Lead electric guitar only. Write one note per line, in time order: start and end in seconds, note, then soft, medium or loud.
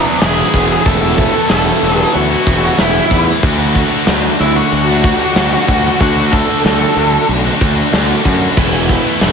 0.00 0.18 E4 medium
0.00 0.25 D5 medium
0.00 0.02 E5 medium
0.23 0.83 G#4 medium
0.23 0.86 G#5 loud
0.86 1.47 A4 medium
0.86 1.49 A5 loud
1.50 2.11 A4 medium
1.50 1.93 A5 loud
1.93 2.11 G#5 loud
2.14 2.75 F#4 medium
2.14 2.75 F#5 medium
2.79 3.24 E4 medium
2.79 3.25 E5 medium
4.41 4.55 E4 medium
4.41 4.56 E5 medium
4.56 5.97 F#4 medium
4.56 6.00 F#5 medium
6.01 6.31 F#4 medium
6.01 6.34 F#5 loud
6.32 7.25 A4 medium
6.32 7.25 A5 loud